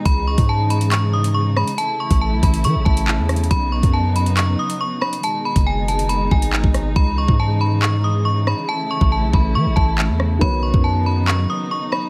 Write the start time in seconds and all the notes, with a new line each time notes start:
Already playing: G#3 D#4
0.05 C#2 C#3 E3 B5, kick, closed hi-hat
0.27 C#6
0.38 G#2, kick, closed hi-hat
0.49 A5
0.70 B5, closed hi-hat
0.81 closed hi-hat
0.91 C#6, clap, closed hi-hat
1.13 D#6
1.24 closed hi-hat
1.35 C#6
1.57 B5, cross-stick
1.68 closed hi-hat
1.78 C#3 E3 A3 E4 A5, closed hi-hat
2.00 C#6
2.10 A1, kick, closed hi-hat
2.21 A5
2.32 B1
2.43 A1 B5, kick, closed hi-hat
2.54 closed hi-hat
2.64 E3 C#6, closed hi-hat
2.75 A1
2.85 A1 A5, kick
2.97 closed hi-hat
3.08 clap
3.18 E2
3.29 cross-stick, closed hi-hat
3.36 closed hi-hat
3.44 closed hi-hat
3.51 B1 F#3 B3 D#4 B5, kick, closed hi-hat
3.72 C#6
3.83 F#2, kick, closed hi-hat
3.93 A5
4.16 B5, closed hi-hat
4.26 closed hi-hat
4.37 C#6, clap, closed hi-hat
4.59 D#6
4.70 closed hi-hat
4.81 C#6
5.01 B5, cross-stick
5.13 closed hi-hat
5.23 B2 D#3 G#3 D#4 A5, closed hi-hat
5.45 B5
5.56 F#1, kick, closed hi-hat
5.66 G#5
5.88 A5, closed hi-hat
5.99 closed hi-hat
6.09 B5, closed hi-hat
6.31 G#1 G#5, kick
6.42 closed hi-hat
6.53 clap
6.64 G#1, kick
6.74 cross-stick, closed hi-hat
6.96 C#2 C#3 E3 G#3 B5, kick
7.18 C#6
7.28 G#2, kick
7.40 A5
7.61 B5
7.82 C#6, clap
8.04 D#6
8.25 C#6
8.47 B5, cross-stick
8.69 E3 A3 E4 A5
8.91 C#6
9.01 A1, kick
9.12 A5
9.23 B1
9.33 A1 B5, kick
9.55 E3 C#6
9.66 A1
9.76 A1 A5, kick
9.98 clap
10.09 E2
10.20 cross-stick
10.39 B1 D#3 F#3 B3 D#4 F#4 B5, kick
10.43 C#5
10.63 C#6
10.74 F#2, kick
10.84 A5
11.06 B5
11.27 C#6, clap
11.50 D#6
11.71 C#6
11.92 B5, cross-stick